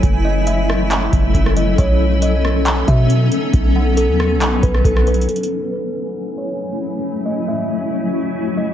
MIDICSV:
0, 0, Header, 1, 5, 480
1, 0, Start_track
1, 0, Tempo, 437956
1, 35, Time_signature, 4, 2, 24, 8
1, 9576, End_track
2, 0, Start_track
2, 0, Title_t, "Kalimba"
2, 0, Program_c, 0, 108
2, 271, Note_on_c, 0, 75, 84
2, 501, Note_off_c, 0, 75, 0
2, 516, Note_on_c, 0, 76, 80
2, 967, Note_off_c, 0, 76, 0
2, 1715, Note_on_c, 0, 75, 79
2, 1943, Note_off_c, 0, 75, 0
2, 1954, Note_on_c, 0, 73, 107
2, 2406, Note_off_c, 0, 73, 0
2, 2434, Note_on_c, 0, 75, 83
2, 3112, Note_off_c, 0, 75, 0
2, 3154, Note_on_c, 0, 76, 90
2, 3382, Note_off_c, 0, 76, 0
2, 4117, Note_on_c, 0, 78, 77
2, 4344, Note_off_c, 0, 78, 0
2, 4349, Note_on_c, 0, 69, 88
2, 5029, Note_off_c, 0, 69, 0
2, 5072, Note_on_c, 0, 71, 93
2, 5302, Note_off_c, 0, 71, 0
2, 5316, Note_on_c, 0, 69, 79
2, 5544, Note_off_c, 0, 69, 0
2, 5563, Note_on_c, 0, 71, 92
2, 5787, Note_off_c, 0, 71, 0
2, 5802, Note_on_c, 0, 69, 111
2, 6250, Note_off_c, 0, 69, 0
2, 6271, Note_on_c, 0, 71, 73
2, 6950, Note_off_c, 0, 71, 0
2, 6990, Note_on_c, 0, 73, 84
2, 7221, Note_off_c, 0, 73, 0
2, 7952, Note_on_c, 0, 75, 76
2, 8182, Note_off_c, 0, 75, 0
2, 8199, Note_on_c, 0, 76, 77
2, 8649, Note_off_c, 0, 76, 0
2, 9396, Note_on_c, 0, 75, 76
2, 9576, Note_off_c, 0, 75, 0
2, 9576, End_track
3, 0, Start_track
3, 0, Title_t, "Ambient pad"
3, 0, Program_c, 1, 92
3, 0, Note_on_c, 1, 54, 84
3, 0, Note_on_c, 1, 57, 79
3, 0, Note_on_c, 1, 61, 77
3, 0, Note_on_c, 1, 64, 78
3, 1911, Note_off_c, 1, 54, 0
3, 1911, Note_off_c, 1, 61, 0
3, 1916, Note_off_c, 1, 57, 0
3, 1917, Note_off_c, 1, 64, 0
3, 1953, Note_on_c, 1, 54, 84
3, 1953, Note_on_c, 1, 59, 76
3, 1954, Note_on_c, 1, 61, 79
3, 1954, Note_on_c, 1, 63, 77
3, 5756, Note_off_c, 1, 54, 0
3, 5756, Note_off_c, 1, 59, 0
3, 5756, Note_off_c, 1, 61, 0
3, 5756, Note_off_c, 1, 63, 0
3, 5796, Note_on_c, 1, 57, 73
3, 5796, Note_on_c, 1, 64, 72
3, 5797, Note_on_c, 1, 54, 82
3, 5797, Note_on_c, 1, 61, 75
3, 9576, Note_off_c, 1, 54, 0
3, 9576, Note_off_c, 1, 57, 0
3, 9576, Note_off_c, 1, 61, 0
3, 9576, Note_off_c, 1, 64, 0
3, 9576, End_track
4, 0, Start_track
4, 0, Title_t, "808-style bass"
4, 0, Program_c, 2, 38
4, 35, Note_on_c, 2, 30, 114
4, 1191, Note_off_c, 2, 30, 0
4, 1237, Note_on_c, 2, 30, 103
4, 1466, Note_off_c, 2, 30, 0
4, 1472, Note_on_c, 2, 30, 106
4, 1934, Note_off_c, 2, 30, 0
4, 1955, Note_on_c, 2, 35, 113
4, 3111, Note_off_c, 2, 35, 0
4, 3156, Note_on_c, 2, 47, 110
4, 3617, Note_off_c, 2, 47, 0
4, 3875, Note_on_c, 2, 35, 113
4, 4474, Note_on_c, 2, 39, 100
4, 4491, Note_off_c, 2, 35, 0
4, 4775, Note_on_c, 2, 35, 106
4, 4792, Note_off_c, 2, 39, 0
4, 5060, Note_off_c, 2, 35, 0
4, 5076, Note_on_c, 2, 35, 105
4, 5306, Note_off_c, 2, 35, 0
4, 5311, Note_on_c, 2, 35, 102
4, 5774, Note_off_c, 2, 35, 0
4, 9576, End_track
5, 0, Start_track
5, 0, Title_t, "Drums"
5, 35, Note_on_c, 9, 36, 115
5, 35, Note_on_c, 9, 42, 71
5, 144, Note_off_c, 9, 42, 0
5, 145, Note_off_c, 9, 36, 0
5, 514, Note_on_c, 9, 42, 84
5, 624, Note_off_c, 9, 42, 0
5, 763, Note_on_c, 9, 37, 101
5, 872, Note_off_c, 9, 37, 0
5, 995, Note_on_c, 9, 42, 78
5, 1004, Note_on_c, 9, 39, 122
5, 1105, Note_off_c, 9, 42, 0
5, 1113, Note_off_c, 9, 39, 0
5, 1237, Note_on_c, 9, 36, 104
5, 1238, Note_on_c, 9, 42, 67
5, 1346, Note_off_c, 9, 36, 0
5, 1347, Note_off_c, 9, 42, 0
5, 1471, Note_on_c, 9, 36, 87
5, 1476, Note_on_c, 9, 42, 73
5, 1581, Note_off_c, 9, 36, 0
5, 1586, Note_off_c, 9, 42, 0
5, 1603, Note_on_c, 9, 37, 92
5, 1713, Note_off_c, 9, 37, 0
5, 1716, Note_on_c, 9, 42, 67
5, 1825, Note_off_c, 9, 42, 0
5, 1954, Note_on_c, 9, 42, 74
5, 1955, Note_on_c, 9, 36, 116
5, 2064, Note_off_c, 9, 42, 0
5, 2065, Note_off_c, 9, 36, 0
5, 2433, Note_on_c, 9, 42, 88
5, 2543, Note_off_c, 9, 42, 0
5, 2681, Note_on_c, 9, 37, 97
5, 2791, Note_off_c, 9, 37, 0
5, 2914, Note_on_c, 9, 42, 80
5, 2923, Note_on_c, 9, 39, 114
5, 3024, Note_off_c, 9, 42, 0
5, 3033, Note_off_c, 9, 39, 0
5, 3156, Note_on_c, 9, 36, 100
5, 3156, Note_on_c, 9, 42, 65
5, 3266, Note_off_c, 9, 36, 0
5, 3266, Note_off_c, 9, 42, 0
5, 3397, Note_on_c, 9, 42, 73
5, 3506, Note_off_c, 9, 42, 0
5, 3635, Note_on_c, 9, 42, 69
5, 3745, Note_off_c, 9, 42, 0
5, 3874, Note_on_c, 9, 42, 74
5, 3875, Note_on_c, 9, 36, 120
5, 3984, Note_off_c, 9, 36, 0
5, 3984, Note_off_c, 9, 42, 0
5, 4353, Note_on_c, 9, 42, 87
5, 4463, Note_off_c, 9, 42, 0
5, 4602, Note_on_c, 9, 37, 99
5, 4711, Note_off_c, 9, 37, 0
5, 4834, Note_on_c, 9, 42, 79
5, 4843, Note_on_c, 9, 39, 119
5, 4944, Note_off_c, 9, 42, 0
5, 4952, Note_off_c, 9, 39, 0
5, 5076, Note_on_c, 9, 36, 98
5, 5076, Note_on_c, 9, 42, 65
5, 5186, Note_off_c, 9, 36, 0
5, 5186, Note_off_c, 9, 42, 0
5, 5200, Note_on_c, 9, 37, 90
5, 5310, Note_off_c, 9, 37, 0
5, 5311, Note_on_c, 9, 36, 86
5, 5316, Note_on_c, 9, 42, 72
5, 5421, Note_off_c, 9, 36, 0
5, 5426, Note_off_c, 9, 42, 0
5, 5443, Note_on_c, 9, 37, 97
5, 5552, Note_off_c, 9, 37, 0
5, 5555, Note_on_c, 9, 42, 43
5, 5636, Note_off_c, 9, 42, 0
5, 5636, Note_on_c, 9, 42, 49
5, 5714, Note_off_c, 9, 42, 0
5, 5714, Note_on_c, 9, 42, 54
5, 5794, Note_off_c, 9, 42, 0
5, 5794, Note_on_c, 9, 42, 58
5, 5875, Note_off_c, 9, 42, 0
5, 5875, Note_on_c, 9, 42, 60
5, 5955, Note_off_c, 9, 42, 0
5, 5955, Note_on_c, 9, 42, 67
5, 6064, Note_off_c, 9, 42, 0
5, 9576, End_track
0, 0, End_of_file